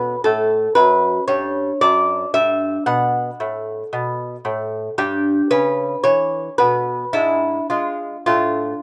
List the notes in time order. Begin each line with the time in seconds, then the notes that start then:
Already playing: B2 C#4 B4
0.24 A2 A4
0.75 F#2 B4
1.28 G2 C#5
1.81 F#2 D4 D5
2.34 G2 E5
2.86 B2 F#5
3.40 A2
3.93 B2
4.45 A2
4.98 G2 D4 G4
5.51 C#3 B4
6.04 E3 C#5
6.58 B2 B4
7.13 G#2 D4 E4
7.70 G#3 F4
8.26 A2 D4 F4